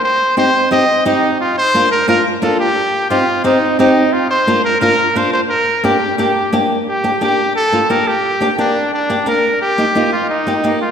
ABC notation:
X:1
M:4/4
L:1/8
Q:1/4=175
K:Gm
V:1 name="Trumpet"
c2 c2 e2 E2 | F c2 B B z A G- | G2 F2 E2 E2 | F c2 B B2 c c |
B2 G2 G3 z | G2 G2 A2 B G- | G2 D2 D2 B2 | G3 F E3 F |]
V:2 name="Nylon-string guitar"
z2 [CEG] z [CEG] z [CEG] z | z2 [B,DF] z [B,DF] z [B,DF] z | z2 [CEG] z [CEG] z [CEG] z | z2 [B,DF] z [B,DF] z [B,DF] z |
z2 [B,DG] z [B,DG] z [B,DG] z | z [B,DG] [B,DG] z2 [B,DF] [B,DG] z | z [B,DG] [B,DG] z2 [B,DG] [B,DB] z | z [B,EG] [B,EF] z2 [B,EG] [B,EG] z |]